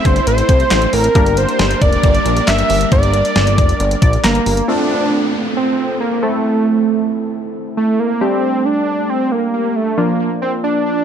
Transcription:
Already playing: A3 C4 E4 A4
0.05 G1 C5, kick, closed hi-hat
0.16 closed hi-hat
0.27 A1 C5, closed hi-hat
0.38 closed hi-hat
0.49 C2, kick, closed hi-hat
0.60 closed hi-hat
0.71 A1, snare, clap, closed hi-hat
0.82 closed hi-hat
0.93 A1 A#4, open hi-hat
1.04 closed hi-hat
1.15 G1 G3 A#3 D4 G4 A#4, kick, closed hi-hat
1.26 closed hi-hat
1.37 C5, closed hi-hat
1.49 closed hi-hat
1.59 G1, snare, closed hi-hat
1.71 closed hi-hat
1.82 F1 D5, kick, closed hi-hat
1.93 closed hi-hat
2.03 G1, kick, closed hi-hat
2.15 closed hi-hat
2.25 A#1, closed hi-hat
2.37 closed hi-hat
2.48 G1 E5, snare, clap, closed hi-hat
2.59 closed hi-hat
2.70 G1, open hi-hat
2.81 closed hi-hat
2.92 G1 D5, kick, closed hi-hat
3.03 closed hi-hat
3.14 closed hi-hat
3.25 closed hi-hat
3.36 G1, snare, closed hi-hat
3.47 closed hi-hat
3.58 F1, kick, closed hi-hat
3.69 closed hi-hat
3.80 G1, closed hi-hat
3.91 closed hi-hat
4.02 A#1 D5, kick, closed hi-hat
4.13 closed hi-hat
4.24 G1 A#3 A#5, snare, clap, closed hi-hat
4.35 closed hi-hat
4.46 G1, open hi-hat
4.57 closed hi-hat
4.68 A3 C4 D4 F4 A4, downlifter
5.57 C4
6.00 A#3
6.22 A3 C4 E4 A4
7.77 A3
7.99 A#3
8.21 G3 A3 C4 D4 G4
8.65 D4
9.10 C4
9.32 A#3
9.54 A#3
9.76 A3
9.98 F3 A#3 D4 F4
10.20 A#3
10.42 C4
10.64 D4
10.86 D4

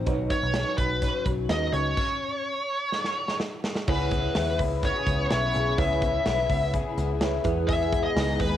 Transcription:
Already playing: C4
0.06 B1 F#3 D#4 B4 C#5, kick, closed hi-hat
0.30 F#3 C#5, kick, closed hi-hat
0.43 B1
0.54 C#4, snare, closed hi-hat
0.78 B1 F#3 B4, kick, closed hi-hat
1.02 C#4, kick, snare, closed hi-hat
1.26 B1 F#3, kick, closed hi-hat
1.49 D#2 D#4 B4 D#5, snare, closed hi-hat
1.73 C#2 C#4 C#5, closed hi-hat
1.97 kick, crash
2.92 snare
3.04 snare
3.28 snare
3.40 snare
3.64 snare
3.75 snare
3.88 C#2 C#3 B3 E4 G#4 B4 C#5, kick, crash
4.11 B3, kick, hi-hat pedal, open hi-hat
4.35 D#2 E4, snare, hi-hat pedal, open hi-hat
4.59 C#2 B3, kick, hi-hat pedal, open hi-hat
4.83 F#4 C#5, kick, snare, hi-hat pedal, open hi-hat
4.95 G#4
5.07 C#2 B3, kick, hi-hat pedal, open hi-hat
5.31 B1 E4 C#5, snare, hi-hat pedal, open hi-hat
5.54 B1 G#4, hi-hat pedal, open hi-hat
5.78 C#2 B3 E4 G#4 B4 C#5 E5, kick, hi-hat pedal, open hi-hat
6.02 B3, kick, hi-hat pedal, open hi-hat
6.26 B1 E4, snare, hi-hat pedal, open hi-hat
6.50 C#2 B3, kick, hi-hat pedal, open hi-hat
6.73 G#4, kick, hi-hat pedal, open hi-hat
6.98 C#2 B3, hi-hat pedal, open hi-hat
7.21 E4 B4 C#5, snare, hi-hat pedal, open hi-hat
7.44 E2 G#3 B3 E4 G#4 B4, kick, hi-hat pedal, open hi-hat
7.68 B3 G#4 E5, kick, hi-hat pedal, open hi-hat
7.93 B3, kick, hi-hat pedal, open hi-hat
8.04 D#5
8.16 C#2 D#4, snare, hi-hat pedal, open hi-hat
8.40 D#2 B3 B4, kick, hi-hat pedal, open hi-hat

